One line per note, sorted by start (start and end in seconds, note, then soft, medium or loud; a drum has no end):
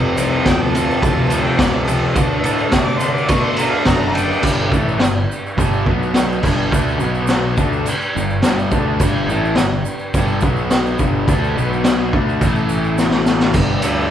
0.00 0.11 F1 loud
0.00 0.16 F2 loud
0.00 0.17 C3 loud
0.00 0.17 F3 loud
0.00 2.11 F4 medium
0.00 2.12 A4 medium
0.00 2.13 C5 medium
0.17 0.39 C2 loud
0.17 0.45 F2 medium
0.17 0.45 C3 loud
0.17 0.45 F3 loud
0.17 ride medium
0.17 shaker loud
0.45 0.88 D2 loud
0.45 0.74 F2 medium
0.45 0.75 C3 medium
0.45 0.76 F3 medium
0.45 0.63 G5 loud
0.45 kick loud
0.45 snare loud
0.45 ride loud
0.45 shaker medium
0.62 1.47 A5 loud
0.75 1.03 F2 medium
0.75 1.04 C3 loud
0.75 1.04 F3 loud
0.75 ride medium
0.75 shaker loud
0.91 shaker soft
1.02 1.45 D2 medium
1.02 1.31 F2 loud
1.02 1.31 C3 loud
1.02 1.32 F3 loud
1.02 kick loud
1.02 ride loud
1.02 shaker medium
1.30 1.58 F2 medium
1.30 1.58 C3 loud
1.30 1.59 F3 medium
1.30 ride medium
1.30 shaker loud
1.46 1.59 G5 medium
1.58 2.01 C#2 loud
1.58 1.86 F2 loud
1.58 1.86 C3 medium
1.58 1.86 F3 loud
1.58 1.83 D5 loud
1.58 kick loud
1.58 snare loud
1.58 ride loud
1.58 shaker medium
1.84 2.14 F2 medium
1.84 2.14 C3 loud
1.84 2.14 F3 loud
1.84 2.13 A4 loud
1.84 ride medium
1.88 shaker medium
2.14 2.36 D2 loud
2.14 2.43 D3 loud
2.14 2.44 A3 medium
2.14 2.44 D4 loud
2.14 4.39 F#4 medium
2.14 4.40 A4 medium
2.14 4.41 D5 medium
2.14 kick loud
2.14 ride loud
2.14 shaker medium
2.43 2.65 A2 loud
2.43 2.71 D3 medium
2.43 2.72 A3 loud
2.43 2.72 D4 loud
2.43 ride medium
2.43 shaker loud
2.58 shaker soft
2.72 3.15 C3 loud
2.72 2.99 D3 medium
2.72 3.00 A3 loud
2.72 3.01 D4 medium
2.72 kick loud
2.72 snare loud
2.72 ride loud
2.72 shaker medium
2.85 3.00 D6 loud
2.99 3.28 D3 medium
2.99 3.28 A3 medium
2.99 3.29 D4 loud
2.99 3.13 C6 loud
2.99 ride medium
2.99 shaker loud
3.13 3.32 D6 medium
3.13 shaker soft
3.28 3.72 B2 loud
3.28 3.58 D3 loud
3.28 3.58 A3 loud
3.28 3.59 D4 loud
3.28 3.45 C#6 loud
3.28 kick loud
3.28 ride loud
3.28 shaker medium
3.44 3.57 C6 loud
3.56 3.85 D3 medium
3.56 3.86 A3 medium
3.56 3.86 D4 medium
3.56 3.73 A#5 loud
3.56 ride medium
3.56 shaker loud
3.72 3.85 F5 loud
3.85 4.29 F#1 loud
3.85 4.13 D3 medium
3.85 4.14 A3 medium
3.85 4.14 D4 loud
3.85 4.17 A#5 loud
3.85 kick loud
3.85 snare loud
3.85 ride loud
3.85 shaker medium
4.14 4.41 D3 medium
4.14 4.42 A3 medium
4.14 4.42 D4 loud
4.14 4.43 G5 medium
4.14 ride medium
4.14 shaker medium
4.33 shaker soft
4.41 4.70 G1 loud
4.41 4.70 G2 loud
4.41 4.69 D3 medium
4.41 4.69 G3 loud
4.41 5.84 D4 medium
4.41 kick loud
4.41 crash loud
4.41 crash medium
4.46 5.85 G4 medium
4.46 5.86 B4 medium
4.46 shaker medium
4.69 4.98 A1 loud
4.69 4.99 A2 medium
4.69 4.99 E3 loud
4.69 4.99 A3 loud
4.69 kick loud
4.74 shaker medium
4.89 shaker soft
4.99 5.27 G1 medium
4.99 5.23 G2 medium
4.99 5.23 D3 medium
4.99 snare loud
4.99 crash medium
5.04 shaker medium
5.32 shaker medium
5.46 shaker soft
5.57 5.84 G1 loud
5.57 5.85 G2 medium
5.57 5.86 D3 loud
5.57 5.86 G3 loud
5.57 kick loud
5.57 crash medium
5.57 shaker loud
5.86 6.39 B1 medium
5.86 6.43 B2 loud
5.86 6.43 F#3 loud
5.86 6.44 B3 medium
5.86 6.44 B3 loud
5.86 6.43 F#4 medium
5.86 6.44 B4 medium
5.86 kick loud
6.03 shaker soft
6.14 snare loud
6.14 crash medium
6.14 shaker loud
6.32 shaker soft
6.41 6.70 G1 loud
6.41 6.72 G2 medium
6.41 6.72 D3 loud
6.41 6.72 G3 loud
6.41 7.00 D4 medium
6.41 7.00 G4 medium
6.41 7.00 B4 medium
6.41 kick loud
6.41 crash loud
6.41 shaker medium
6.72 6.99 D2 loud
6.72 7.00 D3 loud
6.72 7.01 A3 loud
6.72 7.02 D4 loud
6.72 kick loud
6.72 crash medium
6.72 shaker loud
6.88 shaker soft
7.00 7.53 B1 loud
7.00 7.57 B2 loud
7.00 7.57 F#3 loud
7.00 7.58 B3 medium
7.00 7.58 B3 loud
7.00 7.57 F#4 medium
7.00 7.58 B4 medium
7.00 shaker medium
7.14 shaker soft
7.27 snare loud
7.27 crash medium
7.27 shaker loud
7.56 7.84 D2 medium
7.56 7.86 D3 loud
7.56 7.86 A3 loud
7.56 10.38 D4 medium
7.56 7.86 D4 loud
7.56 10.39 G4 medium
7.56 10.39 B4 medium
7.56 kick loud
7.56 shaker medium
7.73 shaker soft
7.85 muted distorted electric guitar stroke medium
7.85 muted fingered electric bass stroke soft
7.85 crash medium
7.85 shaker loud
8.02 shaker soft
8.16 8.42 G1 medium
8.16 8.38 G2 medium
8.16 8.38 D3 medium
8.16 shaker medium
8.30 shaker soft
8.42 8.70 G1 loud
8.42 8.72 G2 loud
8.42 8.72 D3 loud
8.42 8.72 G3 loud
8.42 snare loud
8.42 crash medium
8.42 shaker loud
8.59 shaker soft
8.72 8.98 D2 loud
8.72 9.00 D3 medium
8.72 9.00 A3 medium
8.72 9.00 D4 loud
8.72 kick loud
8.72 shaker medium
8.99 9.27 G1 loud
8.99 9.28 G2 loud
8.99 9.29 D3 loud
8.99 9.29 G3 loud
8.99 kick loud
8.99 crash medium
8.99 shaker loud
9.27 9.54 A1 loud
9.27 9.57 A2 loud
9.27 9.57 E3 loud
9.27 9.58 A3 loud
9.27 shaker medium
9.45 shaker soft
9.55 9.83 G1 medium
9.55 9.81 G2 medium
9.55 snare loud
9.55 crash medium
9.55 shaker loud
9.60 9.81 D3 medium
9.85 shaker medium
9.99 shaker soft
10.13 10.40 G1 loud
10.13 10.43 G2 medium
10.13 10.43 D3 loud
10.13 10.43 G3 loud
10.13 kick loud
10.13 crash medium
10.13 shaker medium
10.28 shaker soft
10.41 10.95 B1 loud
10.41 10.99 B2 loud
10.41 10.99 F#3 loud
10.41 10.99 B3 medium
10.41 10.99 F#4 medium
10.41 11.00 B4 medium
10.41 kick loud
10.41 shaker medium
10.56 shaker soft
10.70 snare loud
10.70 crash medium
10.70 shaker medium
10.86 shaker soft
10.99 11.26 G1 loud
10.99 11.27 G2 loud
10.99 11.27 D3 medium
10.99 11.28 G3 loud
10.99 11.57 D4 medium
10.99 11.57 G4 medium
10.99 11.57 B4 medium
10.99 kick loud
10.99 shaker medium
11.28 11.54 D2 loud
11.28 11.56 D3 medium
11.28 11.56 A3 loud
11.28 11.56 D4 loud
11.28 kick loud
11.28 crash medium
11.28 shaker medium
11.44 shaker soft
11.57 12.10 B1 loud
11.57 12.13 B2 medium
11.57 12.13 F#3 loud
11.57 12.13 B3 medium
11.57 12.13 B3 loud
11.57 12.14 F#4 medium
11.57 12.15 B4 medium
11.57 shaker medium
11.73 shaker soft
11.84 snare loud
11.84 crash medium
11.84 shaker medium
12.13 12.39 D2 loud
12.13 12.41 D3 loud
12.13 12.41 A3 medium
12.13 12.41 D4 loud
12.13 kick loud
12.17 12.42 B5 medium
12.29 shaker soft
12.41 13.51 A1 loud
12.41 13.54 A2 medium
12.41 13.55 E3 medium
12.41 13.55 A3 loud
12.41 13.53 E4 medium
12.41 kick loud
12.41 crash medium
12.41 shaker loud
12.45 13.55 A4 medium
12.45 13.29 E5 medium
12.45 12.70 A5 medium
12.55 shaker soft
12.69 shaker medium
12.77 13.00 G5 medium
12.84 shaker soft
12.98 snare medium
12.98 shaker medium
13.07 13.29 F#5 medium
13.07 snare medium
13.26 snare loud
13.26 shaker medium
13.30 13.55 E5 medium
13.40 snare medium
13.40 shaker soft
13.54 13.76 G1 loud
13.54 13.83 G2 loud
13.54 13.83 D3 medium
13.54 13.85 G3 loud
13.54 kick loud
13.54 crash loud
13.54 shaker medium
13.58 14.11 G4 medium
13.58 14.11 B4 medium
13.58 14.11 D5 loud
13.82 14.05 D2 loud
13.82 14.10 G2 medium
13.82 14.10 D3 medium
13.82 14.11 G3 loud
13.82 ride medium
13.82 shaker medium